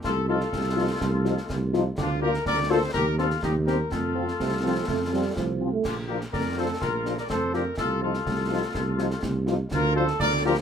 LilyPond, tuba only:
\new Staff \with { instrumentName = "Tuba" } { \clef bass \time 2/4 \key bes \major \tempo 4 = 124 c,4 c,4 | c,4 c,4 | d,4 d,4 | ees,4 ees,4 |
f,4 c,4 | f,4 c,4 | bes,,4 f,4 | bes,,4 f,4 |
c,4 c,4 | c,4 c,4 | d,4 d,4 | }